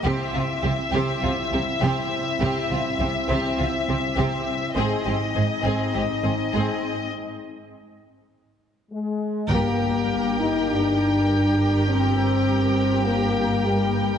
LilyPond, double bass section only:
\new Staff \with { instrumentName = "Double bass section" } { \clef bass \time 4/4 \key g \phrygian \tempo 4 = 101 c,8 c,8 c,8 c,8 c,8 c,8 c,8 r8 | c,8 c,8 c,8 c,8 c,8 c,8 c,8 r8 | aes,,8 aes,,8 aes,,8 aes,,8 aes,,8 aes,,8 aes,,8 r8 | r1 |
g,,1~ | g,,1 | }